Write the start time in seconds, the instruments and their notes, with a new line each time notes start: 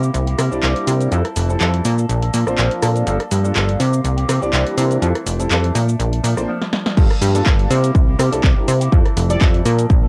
Already playing: analog synth bass C3
0.02 clean electric guitar A#3 E4 G4, shaker
0.14 analog synth bass C2, closed hi-hat, shaker
0.27 clean electric guitar A#3 E4 G4, closed hi-hat
0.38 analog synth bass C3, clean electric guitar G3 A#3 E4 G4, cross-stick, open hi-hat, shaker
0.51 analog synth bass C2, grand piano G3 C4 D4 E4 D5, clean electric guitar A#3 E4 G4, shaker
0.63 analog synth bass C2, clean electric guitar G3 A#3 E4 G4, clap, closed hi-hat, shaker
0.76 closed hi-hat
0.87 analog synth bass C3, grand piano G3 C4 D4 E4 A#4, open hi-hat, shaker
1.00 closed hi-hat, shaker
1.11 analog synth bass F2, clean electric guitar E3 C4 E4 A4, grand piano G3 C4 E4 F4 A4, closed hi-hat, shaker
1.24 clean electric guitar C4 E4 A4, cross-stick, closed hi-hat
1.36 analog synth bass F1, clean electric guitar E3 C4 E4 A4, open hi-hat, shaker
1.49 grand piano G3 C4 E4 A4, clean electric guitar C4 E4 A4, shaker
1.60 analog synth bass F2, clean electric guitar E3 C4 E4 A4, clap, closed hi-hat, shaker
1.74 closed hi-hat
1.84 analog synth bass A#2, clean electric guitar F3 A#3 D4 A4, open hi-hat, shaker
1.98 clean electric guitar A#3 D4 A4, shaker
2.09 analog synth bass A#1, closed hi-hat, shaker
2.22 clean electric guitar A#3 D4 A4, closed hi-hat
2.33 analog synth bass A#2, clean electric guitar F3 A#3 D4 A4, open hi-hat, shaker
2.46 analog synth bass A#1, grand piano A#3 C4 D4 F4 C5, clean electric guitar A#3 D4 A4, cross-stick, shaker
2.58 analog synth bass A#1, clean electric guitar F3 A#3 D4 A4, clap, closed hi-hat, shaker
2.71 closed hi-hat
2.82 analog synth bass A#2, grand piano A#3 C4 D4 F4 A4, cross-stick, open hi-hat, shaker
2.96 closed hi-hat, shaker
3.06 analog synth bass G1, clean electric guitar F3 A#3 D4 A4, grand piano G3 A#3 D4 F4 A4, closed hi-hat, shaker
3.20 clean electric guitar A#3 D4 A4, cross-stick, closed hi-hat
3.31 analog synth bass G2, clean electric guitar F3 A#3 D4 A4, open hi-hat, shaker
3.44 grand piano G3 A#3 D4 F4 A4, clean electric guitar A#3 D4 A4, shaker
3.55 analog synth bass G1, clean electric guitar F3 A#3 D4 A4, clap, closed hi-hat, shaker
3.69 closed hi-hat
3.79 analog synth bass C3, clean electric guitar E3 A#3 C4 G4, open hi-hat, shaker
3.93 clean electric guitar A#3 C4 G4, shaker
4.04 analog synth bass C2, closed hi-hat, shaker
4.17 clean electric guitar A#3 C4 G4, closed hi-hat
4.28 analog synth bass C3, clean electric guitar E3 A#3 C4 G4, cross-stick, open hi-hat, shaker
4.41 analog synth bass C2, grand piano G3 C4 D4 E4 D5, clean electric guitar A#3 C4 G4, shaker
4.53 analog synth bass C2, clean electric guitar E3 A#3 C4 G4, clap, closed hi-hat, shaker
4.67 closed hi-hat
4.78 analog synth bass C3, grand piano G3 C4 D4 E4 A#4, open hi-hat, shaker
4.91 closed hi-hat, shaker
5.02 analog synth bass F2, clean electric guitar E3 A3 C4, grand piano G3 C4 E4 F4 A4, closed hi-hat, shaker
5.15 cross-stick, closed hi-hat
5.26 analog synth bass F1, clean electric guitar E3 A3 C4, open hi-hat, shaker
5.39 grand piano G3 C4 E4 A4, clean electric guitar A3 C4, closed hi-hat, shaker
5.50 analog synth bass F2, clean electric guitar E3 A3 C4, clap, closed hi-hat, shaker
5.64 closed hi-hat
5.75 analog synth bass A#2, clean electric guitar F3 A3 D4, open hi-hat, shaker
5.88 clean electric guitar A3 D4, shaker
6.00 analog synth bass A#1, closed hi-hat, shaker
6.12 clean electric guitar A3 D4, closed hi-hat
6.23 analog synth bass A#2, clean electric guitar F3 A3 D4, open hi-hat, shaker
6.36 analog synth bass A#1, clean electric guitar A3 D4, grand piano A#3 C4 D4 F4 C5, cross-stick, shaker
6.48 clean electric guitar F3 A3 D4
6.62 snare
6.73 snare
6.86 snare
6.97 analog synth bass G1, clean electric guitar F3 A#3 D4 A4, grand piano G3 A#3 D4 F4 A4, kick, crash, shaker
7.11 cross-stick, closed hi-hat
7.21 analog synth bass G2, open hi-hat, shaker
7.34 grand piano G3 A#3 D4 F4 A4, clean electric guitar A#3 D4 A4, closed hi-hat, shaker
7.46 analog synth bass G1, clean electric guitar F3 A#3 D4 A4, kick, clap, shaker
7.59 clean electric guitar A#3 D4 A4, closed hi-hat
7.70 analog synth bass C3, clean electric guitar G3 A#3 E4 G4, open hi-hat, shaker
7.84 closed hi-hat, shaker
7.95 analog synth bass C2, kick, shaker
8.07 clean electric guitar A#3 E4 G4
8.19 analog synth bass C3, clean electric guitar G3 A#3 E4 G4, cross-stick, open hi-hat, shaker
8.32 analog synth bass C2, grand piano G3 C4 D4 E4 A4, clean electric guitar A#3 E4 G4, closed hi-hat, shaker
8.43 analog synth bass C2, clean electric guitar G3 A#3 E4, kick, clap, shaker
8.56 grand piano G3 C4 D4 E4 A#4, clean electric guitar A#3 E4 G4
8.68 analog synth bass C3, open hi-hat, shaker
8.80 clean electric guitar A#3 E4 G4, closed hi-hat, shaker
8.92 analog synth bass F2, clean electric guitar E3 C4 E4 A4, grand piano G3 C4 E4 F4 A4, kick, shaker
9.06 cross-stick, closed hi-hat
9.17 analog synth bass F1, open hi-hat, shaker
9.29 grand piano G3 C4 E4 A4, clean electric guitar C4 E4 A4, analog polysynth D5, closed hi-hat, shaker
9.41 analog synth bass F2, clean electric guitar E3 C4 E4 A4, kick, clap, shaker
9.54 closed hi-hat
9.65 analog synth bass A#2, clean electric guitar F3 A#3 D4 A4, open hi-hat, shaker
9.79 closed hi-hat, shaker
9.90 analog synth bass A#1, kick, shaker
10.02 clean electric guitar A#3 D4 A4